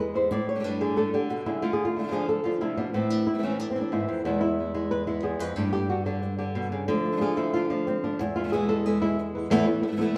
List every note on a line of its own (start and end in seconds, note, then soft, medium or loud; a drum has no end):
0.00 0.31 E2 medium
0.00 0.29 G#3 medium
0.00 0.30 E4 soft
0.00 0.15 B4 medium
0.14 0.31 E3 soft
0.14 0.31 G#3 soft
0.14 0.31 B3 soft
0.14 0.30 E4 soft
0.14 0.32 C5 medium
0.31 0.81 A2 medium
0.31 0.48 D5 medium
0.31 muted nylon-string guitar stroke medium
0.49 0.64 C#5 loud
0.55 0.58 A2 soft
0.55 0.59 D3 soft
0.55 0.59 G3 soft
0.55 0.59 D4 soft
0.55 0.59 G4 soft
0.59 0.63 A2 soft
0.59 0.63 D3 soft
0.59 0.63 G3 soft
0.59 0.64 D4 medium
0.59 0.64 G4 medium
0.64 0.95 G2 medium
0.64 0.96 A2 medium
0.64 0.96 D3 medium
0.64 0.96 G3 medium
0.64 0.97 D4 medium
0.64 0.97 G4 medium
0.64 0.81 B4 medium
0.81 1.13 D3 medium
0.81 0.97 G#4 medium
0.96 1.12 G2 medium
0.96 1.13 A2 medium
0.96 1.13 D3 medium
0.96 1.13 G3 medium
0.96 1.12 D4 medium
0.96 1.12 G4 medium
0.96 1.13 A4 medium
1.13 1.61 D3 medium
1.13 1.29 D3 soft
1.13 1.29 G3 soft
1.13 1.29 D4 soft
1.13 1.29 G4 soft
1.13 1.30 G4 medium
1.30 1.46 B2 medium
1.30 1.46 F#4 medium
1.30 muted nylon-string guitar stroke medium
1.45 1.62 C#3 medium
1.45 1.61 D3 soft
1.45 1.62 G3 soft
1.45 1.62 D4 soft
1.45 1.63 E4 medium
1.45 1.62 G4 soft
1.62 2.60 D3 medium
1.62 1.95 D3 medium
1.62 1.95 A3 medium
1.62 1.95 D4 medium
1.62 1.74 F4 medium
1.62 1.93 F4 medium
1.73 1.84 G#4 medium
1.85 1.96 F4 medium
1.95 2.02 D3 soft
1.95 1.98 A3 soft
1.95 1.98 D4 soft
1.95 2.12 E4 medium
1.95 1.98 F4 soft
1.99 2.02 A3 soft
1.99 2.03 D4 soft
1.99 2.03 F4 medium
2.03 2.06 D3 soft
2.03 2.06 A3 soft
2.03 2.07 D4 soft
2.03 2.07 F4 medium
2.07 2.11 D3 soft
2.07 2.43 F3 medium
2.07 2.11 A3 medium
2.07 2.12 D4 medium
2.07 2.12 F4 medium
2.12 2.27 D3 medium
2.12 2.27 A3 medium
2.12 2.28 D4 medium
2.12 2.28 F4 medium
2.12 2.28 G#4 loud
2.28 2.45 A4 medium
2.28 muted nylon-string guitar stroke medium
2.44 2.92 F3 medium
2.44 2.60 A3 soft
2.44 2.61 D4 soft
2.44 2.60 F4 soft
2.44 2.61 F4 medium
2.61 2.77 C3 medium
2.61 2.93 D3 soft
2.61 2.94 A3 soft
2.61 2.94 D4 soft
2.61 2.78 E4 medium
2.61 2.94 F4 medium
2.77 2.94 B2 medium
2.77 2.93 D4 medium
2.93 3.26 A2 medium
2.93 4.26 A2 medium
2.93 3.26 E3 medium
2.93 3.27 A3 medium
2.93 3.10 C4 medium
2.93 3.26 C4 medium
2.93 3.25 E4 medium
3.10 3.27 D4 medium
3.26 3.33 A3 soft
3.26 3.34 C4 soft
3.26 3.34 E4 soft
3.26 3.43 E4 medium
3.34 3.37 E3 soft
3.34 3.37 A3 soft
3.34 3.38 C4 soft
3.34 3.38 E4 soft
3.39 3.42 E3 medium
3.39 3.42 A3 soft
3.39 3.43 C4 medium
3.39 3.43 E4 medium
3.43 3.58 A2 medium
3.43 3.75 E3 medium
3.43 3.58 E3 medium
3.43 3.58 A3 medium
3.43 3.59 C4 medium
3.43 3.59 C#4 medium
3.43 3.59 E4 medium
3.59 3.70 D4 medium
3.59 muted nylon-string guitar stroke soft
3.71 3.81 C4 medium
3.75 4.23 E3 medium
3.75 3.92 A3 soft
3.75 3.92 C4 soft
3.75 3.92 E4 soft
3.81 3.92 D4 medium
3.92 4.08 G#2 medium
3.92 4.25 E3 soft
3.92 4.25 A3 soft
3.92 4.25 C4 medium
3.92 4.09 E4 medium
3.92 4.26 E4 medium
4.08 4.25 F2 medium
4.08 4.24 C4 medium
4.24 4.41 E2 medium
4.24 5.22 E2 medium
4.24 4.41 B2 medium
4.24 4.41 E3 medium
4.24 4.73 G#3 soft
4.24 4.42 G#3 medium
4.24 4.41 B3 medium
4.24 4.40 E4 medium
4.41 4.57 E3 soft
4.41 4.58 G#3 soft
4.41 4.58 B3 soft
4.41 4.58 E4 loud
4.41 4.57 E4 soft
4.58 4.74 E3 soft
4.58 4.74 G#3 soft
4.58 4.74 B3 soft
4.58 5.06 E4 soft
4.58 4.73 E4 soft
4.74 4.90 E3 soft
4.74 5.06 G#3 medium
4.74 4.90 G#3 soft
4.74 4.91 B3 soft
4.74 4.90 E4 soft
4.91 5.07 B4 medium
4.91 muted nylon-string guitar stroke soft
5.07 5.56 E3 soft
5.07 5.55 G#3 medium
5.07 5.57 G#3 soft
5.07 5.56 B3 soft
5.07 5.56 E4 soft
5.07 5.23 E4 medium
5.23 5.39 E2 medium
5.23 5.40 G#4 medium
5.39 5.56 F2 medium
5.39 5.56 B4 loud
5.56 5.72 G2 medium
5.56 6.86 G2 medium
5.56 5.73 A2 medium
5.56 5.73 D3 medium
5.56 5.73 G3 medium
5.56 5.72 D4 medium
5.56 5.71 G4 medium
5.56 5.72 A4 medium
5.72 5.88 D3 soft
5.72 5.89 G3 soft
5.72 5.89 D4 soft
5.72 5.89 G4 soft
5.72 5.89 G4 loud
5.89 6.05 D3 soft
5.89 6.06 G3 soft
5.89 6.05 D4 soft
5.89 6.06 F#4 medium
5.89 6.05 G4 soft
6.06 6.37 D3 medium
6.06 6.22 D3 soft
6.06 6.22 G3 soft
6.06 6.88 D4 medium
6.06 6.22 D4 soft
6.06 6.22 G4 soft
6.22 muted nylon-string guitar stroke medium
6.38 6.87 D3 medium
6.38 6.88 D3 soft
6.38 6.88 G3 soft
6.38 6.88 D4 soft
6.38 6.87 G4 medium
6.55 6.72 B2 medium
6.72 6.88 C#3 medium
6.88 8.18 D3 medium
6.88 7.36 F3 medium
6.88 7.87 A3 medium
6.88 7.53 D4 medium
6.88 muted nylon-string guitar stroke medium
7.04 7.11 A3 soft
7.04 7.12 D4 soft
7.04 7.12 F4 soft
7.12 7.15 D3 soft
7.12 7.16 A3 soft
7.12 7.16 D4 soft
7.12 7.16 F4 soft
7.16 7.20 D3 medium
7.16 7.20 A3 medium
7.16 7.21 D4 medium
7.16 7.21 F4 medium
7.21 7.53 D3 medium
7.21 7.54 A3 medium
7.21 7.54 D4 medium
7.21 7.54 F4 medium
7.21 7.37 G#4 medium
7.37 7.69 F3 medium
7.37 7.54 E4 loud
7.53 7.86 D3 medium
7.53 7.86 A3 medium
7.53 7.87 D4 medium
7.53 7.70 F4 loud
7.53 7.87 F4 medium
7.70 8.18 F3 medium
7.70 7.87 D4 medium
7.87 8.03 C4 medium
7.87 muted nylon-string guitar stroke medium
8.04 8.20 A3 soft
8.04 8.20 D4 medium
8.04 8.20 D4 soft
8.04 8.19 F4 soft
8.19 9.49 E2 medium
8.19 8.36 E4 medium
8.19 muted nylon-string guitar stroke medium
8.36 8.43 E3 soft
8.36 8.43 G#3 soft
8.36 8.43 B3 soft
8.36 8.43 E4 soft
8.36 8.52 F4 loud
8.44 8.47 B2 soft
8.44 8.47 E3 soft
8.44 8.48 G#3 soft
8.44 8.48 B3 soft
8.44 8.48 E4 soft
8.48 8.52 B2 medium
8.48 8.52 E3 medium
8.48 8.52 G#3 medium
8.48 8.52 B3 medium
8.48 8.53 E4 medium
8.52 8.84 E2 medium
8.52 8.84 B2 medium
8.52 8.85 E3 medium
8.52 8.85 G#3 medium
8.52 8.85 B3 medium
8.52 8.85 E4 medium
8.52 8.68 G#4 medium
8.68 9.01 G#3 medium
8.68 8.86 A4 loud
8.85 9.17 E2 medium
8.85 9.18 B2 medium
8.85 9.18 E3 medium
8.85 9.18 G#3 medium
8.85 9.18 B3 medium
8.85 9.19 E4 medium
8.85 9.01 G#4 medium
9.02 9.49 G#3 medium
9.02 9.18 E4 loud
9.19 muted nylon-string guitar stroke medium
9.35 9.51 E3 soft
9.35 9.51 G#3 soft
9.35 9.51 B3 soft
9.35 9.51 E4 soft
9.35 9.49 B4 soft
9.50 9.66 E2 medium
9.50 9.83 E2 medium
9.50 9.67 A2 medium
9.50 9.83 A2 medium
9.50 9.67 E3 loud
9.50 9.84 E3 medium
9.50 9.66 A3 loud
9.50 9.84 A3 medium
9.50 9.66 B3 medium
9.50 9.83 B3 medium
9.50 9.66 E4 medium
9.50 9.83 E4 medium
9.67 9.82 E3 soft
9.67 9.82 A3 soft
9.67 9.82 B3 medium
9.67 9.83 E4 medium
9.83 9.87 A3 soft
9.83 9.87 B3 soft
9.83 9.87 E4 soft
9.83 muted nylon-string guitar stroke medium
9.87 9.91 A2 soft
9.87 9.91 E3 soft
9.87 9.92 A3 soft
9.87 9.92 B3 soft
9.87 9.92 E4 soft
9.92 9.95 A2 medium
9.92 9.95 E3 soft
9.92 9.96 A3 medium
9.92 9.96 B3 medium
9.92 9.96 E4 medium
9.96 10.00 A2 medium
9.96 10.00 E3 medium
9.96 10.00 A3 medium
9.96 10.15 A3 soft
9.96 10.01 B3 medium
9.96 10.15 B3 medium
9.96 10.01 E4 medium
9.96 10.15 E4 medium
10.00 10.15 E2 medium
10.00 10.16 A2 medium
10.00 10.15 E3 soft
10.00 10.16 E3 medium
10.00 10.16 A3 medium
10.00 10.16 B3 medium
10.00 10.16 E4 medium